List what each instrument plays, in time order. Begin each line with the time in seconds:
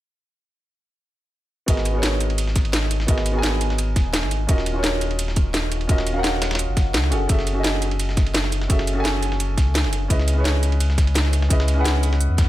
1.66 sub bass G#1, grand piano B3 F#4 G#4 A#4 D#5, kick, closed hi-hat, ride
1.77 snare
1.85 closed hi-hat, ride
1.91 grand piano B3 F#4 G#4
1.97 grand piano A#4 C#5
2.03 snare, closed hi-hat, ride
2.20 closed hi-hat, ride
2.30 ride
2.38 closed hi-hat, ride
2.48 snare
2.56 kick, snare, closed hi-hat, ride
2.65 ride
2.73 snare, closed hi-hat, ride
2.82 snare
2.91 closed hi-hat, ride
3.00 snare
3.07 sub bass G#1, grand piano B3 F#4 G#4 A#4 D#5, kick, closed hi-hat, ride
3.18 snare
3.26 closed hi-hat, ride
3.32 grand piano B3 F#4 G#4
3.37 grand piano A#4 G#5
3.43 snare, closed hi-hat, ride
3.61 closed hi-hat, ride
3.70 snare
3.78 closed hi-hat, ride
3.96 sub bass D#1, kick, snare, closed hi-hat, ride
4.14 snare, closed hi-hat, ride
4.23 sub bass G#1, snare
4.31 closed hi-hat, ride
4.47 sub bass D#1, grand piano C#4 F4 F#4 A#4 D#5, kick, closed hi-hat, ride
4.58 snare
4.66 closed hi-hat, ride
4.72 grand piano C#4 F4 F#4
4.77 grand piano A#4 C#5
4.84 snare, closed hi-hat, ride
5.01 closed hi-hat, ride
5.11 ride
5.19 closed hi-hat, ride
5.28 snare
5.36 kick, closed hi-hat, ride
5.54 snare, closed hi-hat, ride
5.72 closed hi-hat, ride
5.81 ride
5.88 sub bass D#1, grand piano C#4 F4 F#4 A#4 D#5, kick, closed hi-hat, ride
5.98 snare
6.07 closed hi-hat, ride
6.12 grand piano C#4 F#4 F5
6.18 grand piano A#4 F#5
6.24 snare, closed hi-hat, ride
6.42 snare, closed hi-hat, ride
6.51 snare, ride
6.55 snare, ride
6.59 closed hi-hat, ride
6.68 sub bass F#1
6.77 kick, snare, closed hi-hat, ride
6.94 sub bass C#2, snare, closed hi-hat, ride
7.04 snare
7.10 sub bass F#1, grand piano C#4 F#4 G#4 A4 F#5, closed hi-hat, ride
7.28 sub bass F#1, grand piano C#4 F#4 G#4 A4 E5, kick, closed hi-hat, ride
7.39 snare
7.47 closed hi-hat, ride
7.53 grand piano C#4 F#4 G#4
7.58 grand piano A4 D#5
7.64 snare, closed hi-hat, ride
7.82 closed hi-hat, ride
7.91 ride
7.99 closed hi-hat, ride
8.09 snare
8.17 kick, snare, closed hi-hat, ride
8.27 ride
8.34 snare, closed hi-hat, ride
8.44 snare
8.52 closed hi-hat, ride
8.62 snare
8.68 sub bass F#1, grand piano C#4 F#4 G#4 A4 E5, kick, closed hi-hat, ride
8.79 snare
8.87 closed hi-hat, ride
8.93 grand piano C#4 F#4 G#4
8.98 grand piano A4 G#5
9.05 snare, closed hi-hat, ride
9.22 closed hi-hat, ride
9.32 snare
9.40 closed hi-hat, ride
9.57 sub bass C#2, kick, snare, closed hi-hat, ride
9.75 snare, closed hi-hat, ride
9.84 sub bass F#1, snare
9.93 closed hi-hat, ride
10.08 sub bass C#2, grand piano C#4 E4 G#4 B4 D#5, kick, closed hi-hat, ride
10.19 snare
10.28 closed hi-hat, ride
10.33 grand piano C#4 E4 G#4
10.39 grand piano B4 C#5
10.45 snare, closed hi-hat, ride
10.63 closed hi-hat, ride
10.72 ride
10.80 closed hi-hat, ride
10.90 snare
10.98 kick, snare, closed hi-hat, ride
11.07 ride
11.15 snare, closed hi-hat, ride
11.25 snare
11.33 closed hi-hat, ride
11.42 snare
11.49 sub bass C#2, grand piano C#4 E4 G#4 B4 D#5, kick, closed hi-hat, ride
11.60 snare
11.68 closed hi-hat, ride
11.74 grand piano C#4 E4 G#4
11.79 grand piano B4 F#5
11.85 snare, closed hi-hat, ride
12.03 closed hi-hat, ride
12.13 snare
12.21 closed hi-hat
12.30 sub bass E2
12.38 kick, snare, closed hi-hat, ride